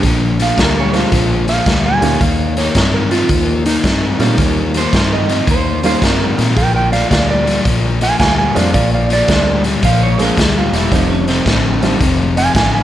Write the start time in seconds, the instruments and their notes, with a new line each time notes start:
Already playing: electric slide guitar D4
0.03 fingered electric bass A#1, overdriven electric guitar A#2 F3, kick, snare, closed hi-hat
0.39 overdriven electric guitar A#2 F3, clean electric guitar F5, snare, closed hi-hat
0.57 fingered electric bass D2, overdriven electric guitar A#2 G3, clean electric guitar A#4, kick, snare, closed hi-hat
0.79 clean electric guitar C#5
0.92 overdriven electric guitar A#2 G3, upright piano G#3 A#3 C4 D4 F4, snare, closed hi-hat
0.96 clean electric guitar F4
1.12 fingered electric bass A#1, overdriven electric guitar A#2 F3, kick, snare, closed hi-hat
1.48 overdriven electric guitar A#2 F3, electric slide guitar F5, snare, closed hi-hat
1.66 fingered electric bass D2, overdriven electric guitar A#2 G3, kick, snare, closed hi-hat
1.86 electric slide guitar G#5
2.01 fingered electric bass D2, overdriven electric guitar A#2 G3, upright piano G3 A#3 C#4 D#4 F4, snare, closed hi-hat
2.21 fingered electric bass D#2, overdriven electric guitar D#3 A#3, electric slide guitar F5, kick, closed hi-hat
2.57 overdriven electric guitar D#3 A#3, electric slide guitar C#5, snare, closed hi-hat
2.75 fingered electric bass G2, overdriven electric guitar D#3 C4, kick, snare, closed hi-hat
2.94 electric slide guitar A#4
3.11 overdriven electric guitar D#3 C4, electric slide guitar F4, snare, closed hi-hat
3.29 fingered electric bass D#2, overdriven electric guitar D#3 A#3, kick, closed hi-hat
3.66 overdriven electric guitar D#3 A#3, electric slide guitar D#4, snare, closed hi-hat
3.84 fingered electric bass G2, overdriven electric guitar D#3 C4, kick, snare, closed hi-hat
4.19 fingered electric bass A#2, overdriven electric guitar D#3 C4, upright piano G3 A#3 C#4 D#4 F4, snare, closed hi-hat
4.38 fingered electric bass D#2, overdriven electric guitar D#3 A#3, kick, snare, closed hi-hat
4.74 overdriven electric guitar D#3 A#3, clean electric guitar C5, snare, closed hi-hat
4.93 fingered electric bass G2, overdriven electric guitar D#3 C4, kick, snare, closed hi-hat
5.13 clean electric guitar D#5
5.29 overdriven electric guitar D#3 C4, snare, closed hi-hat
5.47 fingered electric bass D#2, overdriven electric guitar D#3 A#3, kick, closed hi-hat
5.51 clean electric guitar C5
5.83 overdriven electric guitar D#3 A#3, upright piano G3 A#3 C#4 D#4 F4, clean electric guitar C5, snare, closed hi-hat
6.02 fingered electric bass G2, overdriven electric guitar D#3 C4, clean electric guitar A#4, kick, snare, closed hi-hat
6.38 fingered electric bass A#2, overdriven electric guitar D#3 C4, snare, closed hi-hat
6.57 fingered electric bass A#1, overdriven electric guitar A#2 F3, electric slide guitar A#4 G5, kick, snare, closed hi-hat
6.75 electric slide guitar A#4 G5
6.92 overdriven electric guitar A#2 F3, electric slide guitar D5 F5, snare, closed hi-hat
7.10 fingered electric bass D2, overdriven electric guitar A#2 G3, electric slide guitar D5 F5, kick, snare, closed hi-hat
7.30 electric slide guitar D5
7.46 overdriven electric guitar A#2 G3, snare, closed hi-hat
7.65 fingered electric bass A#1, overdriven electric guitar A#2 F3, kick, snare, closed hi-hat
8.01 overdriven electric guitar A#2 F3, electric slide guitar F5 G#5, snare, closed hi-hat
8.20 fingered electric bass D2, overdriven electric guitar A#2 G3, electric slide guitar F5 G#5, kick, snare, closed hi-hat
8.38 electric slide guitar F5 G#5
8.55 fingered electric bass F2, overdriven electric guitar A#2 G3, upright piano G#3 A#3 C4 D4 F4, electric slide guitar D5 F5, snare, closed hi-hat
8.74 fingered electric bass A#1, overdriven electric guitar A#2 F3, electric slide guitar D5 F5, kick, closed hi-hat
8.94 electric slide guitar D5 F5
9.09 overdriven electric guitar A#2 F3, electric slide guitar D5, snare, closed hi-hat
9.27 fingered electric bass D2, overdriven electric guitar A#2 G3, upright piano G#3 A#3 C4 D4 F4, kick, snare, closed hi-hat
9.64 overdriven electric guitar A#2 G3, snare, closed hi-hat
9.83 fingered electric bass A#1, overdriven electric guitar A#2 F3, clean electric guitar F5, kick, snare, closed hi-hat
10.03 clean electric guitar C#5
10.18 overdriven electric guitar A#2 F3, upright piano G#3 A#3 C4 D4 G#4, clean electric guitar A#4, snare, closed hi-hat
10.37 fingered electric bass D2, overdriven electric guitar A#2 G3, clean electric guitar G#4, kick, snare, closed hi-hat
10.58 clean electric guitar F4
10.73 fingered electric bass E1, overdriven electric guitar A#2 G3, clean electric guitar E4, snare, closed hi-hat
10.91 fingered electric bass F1, overdriven electric guitar F2 C3, upright piano G3 A3 C4 D#4 F4, clean electric guitar D#4, kick, snare, closed hi-hat
11.10 clean electric guitar C#4
11.28 overdriven electric guitar F2 C3, clean electric guitar C4, snare, closed hi-hat
11.46 fingered electric bass A1, overdriven electric guitar F2 D3, kick, snare, closed hi-hat
11.82 overdriven electric guitar F2 D3, upright piano G3 A3 C4 D#4 F4, snare, closed hi-hat
12.01 fingered electric bass F1, overdriven electric guitar F2 C3, kick, snare, closed hi-hat
12.36 overdriven electric guitar F2 C3, electric slide guitar F5 G#5, snare, closed hi-hat
12.55 fingered electric bass A1, overdriven electric guitar F2 D3, electric slide guitar F5 G#5, kick, snare, closed hi-hat
12.74 electric slide guitar F5 G#5